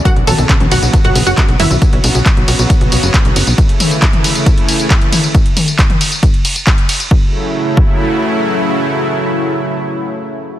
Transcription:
<<
  \new Staff \with { instrumentName = "Synth pluck" } { \time 4/4 \key fis \minor \tempo 4 = 136 <fis' fis''>8 <a' a''>8. r16 <fis' fis''>8. <fis' fis''>8 <fis' fis''>8. <e' e''>8 | r1 | r1 | r1 |
r1 | r1 | }
  \new Staff \with { instrumentName = "Supersaw synth" } { \clef bass \time 4/4 \key fis \minor <cis fis b fis'>8 <cis fis b fis'>8 r16 <cis fis b fis'>8 <cis fis b fis'>8 <cis fis b fis'>8 <cis fis b fis'>16 <cis fis b fis'>8 r8 | <cis fis b fis'>8 <cis fis b fis'>8 r16 <cis fis b fis'>8 <cis fis b fis'>8 <cis fis b fis'>8 <cis fis b fis'>16 <cis fis b fis'>8 r8 | <cis e a e'>8 <cis e a e'>8 r16 <cis e a e'>8 <cis e a e'>8 <cis e a e'>8 <cis e a e'>16 <cis e a e'>8 r8 | r1 |
<cis fis a e'>1~ | <cis fis a e'>1 | }
  \new Staff \with { instrumentName = "Synth arpeggio sound" } { \clef bass \time 4/4 \key fis \minor fis,16 r16 fis16 fis,16 cis16 cis'16 fis,16 r16 fis16 fis,16 cis16 cis'16 fis,16 r16 fis16 fis,16 | r1 | r1 | r1 |
r1 | r1 | }
  \new Staff \with { instrumentName = "Analog synth bass" } { \clef bass \time 4/4 \key fis \minor r16 b,,16 b,,16 b,,16 r16 b,,16 b,,16 b,,16 r16 b,,16 b,,16 fis,,16 r16 b,,16 fis,,16 b,,16 | r16 b,,16 b,,16 b,,16 r16 b,,16 b,,16 b,,16 r16 b,,16 b,,16 fis,,16 r16 b,,16 fis,,16 b,,16 | r1 | r1 |
r1 | r1 | }
  \new DrumStaff \with { instrumentName = "Drums" } \drummode { \time 4/4 <hh bd tamb>16 hh16 <hho cymr tamb toml>16 <hh tamb>16 <hc hh bd tamb>16 <hh toml>16 <hho cymr tamb>16 <hh tamb>16 <hh bd tamb>16 hh16 <hho cymr tamb>16 <hh tamb>16 <hc hh bd tamb>16 hh16 <hho cymr tamb toml>16 <hh tamb>16 | <hh bd tamb>16 hh16 <hho cymr tamb>16 <hh tamb>16 <hc hh bd tamb>16 hh16 <hho cymr tamb>16 <hh tamb>16 <hh bd tamb>16 hh16 <hho cymr tamb>16 <hh tamb>16 <hc hh bd tamb>16 hh16 <hho cymr tamb>16 <hh tamb>16 | <hh bd tamb>16 hh16 <hho cymr tamb toml>16 <hh tamb>16 <hc hh bd tamb>16 <hh toml>16 <hho cymr tamb>16 <hh tamb>16 <hh bd tamb>16 hh16 <hho cymr tamb>16 <hh tamb>16 <hc hh bd tamb>16 hh16 <hho cymr tamb toml>16 <hh tamb>16 | <hh bd tamb>16 hh16 <hho cymr tamb toml>16 <hh tamb>16 <hc hh bd tamb>16 <hh toml>16 <hho cymr tamb>16 <hh tamb>16 <hh bd tamb>16 hh16 <hho cymr tamb>16 <hh tamb>16 <hc hh bd tamb>16 hh16 <hho cymr tamb>16 <hh tamb>16 |
bd4 r8 bd8 r4 r4 | r4 r4 r4 r4 | }
>>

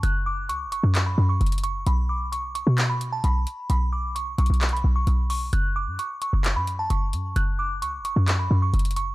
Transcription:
<<
  \new Staff \with { instrumentName = "Synth bell" } { \time 4/4 \key b \dorian \tempo 4 = 131 fis'''8 d'''8 cis'''8 cis'''8. b''8 cis'''8. cis'''8 | b''8 d'''8 cis'''8 cis'''8. b''8 a''16 b''4 | b''8 d'''8 cis'''8 cis'''8. b''8 cis'''8. cis'''8 | fis'''8 d'''8 cis'''8 cis'''8. b''8 a''16 cis'''4 |
fis'''8 d'''8 cis'''8 cis'''8. b''8 cis'''8. cis'''8 | }
  \new Staff \with { instrumentName = "808-style bass" } { \clef bass \time 4/4 \key b \dorian fis,,4 cis,16. fis,,16. fis,8. fis,8 fis,,4 | b,,4.~ b,,16 b,4~ b,16 b,,8 r8 | b,,4. b,,16 b,,8. b,,8 b,,4 | fis,,8. fis,16 r8. fis,,8 fis,8. fis,,8 fis,8 |
fis,,4 cis,16. fis,,16. fis,8. fis,8 fis,,4 | }
  \new DrumStaff \with { instrumentName = "Drums" } \drummode { \time 4/4 hh4 hh8 hh8 <hc hh>4 hh32 hh32 hh32 hh32 hh8 | hh4 hh8 hh8 <hc hh>8 hh8 hh8 hh8 | hh4 \tuplet 3/2 { hh16 r16 r16 hh16 hh16 hh16 <hc hh>16 hh16 hh16 r16 r16 r16 } hh8 hho8 | hh4 hh8 hh8 <hc hh>8 hh8 hh8 hh8 |
hh4 hh8 hh8 <hc hh>4 hh32 hh32 hh32 hh32 hh8 | }
>>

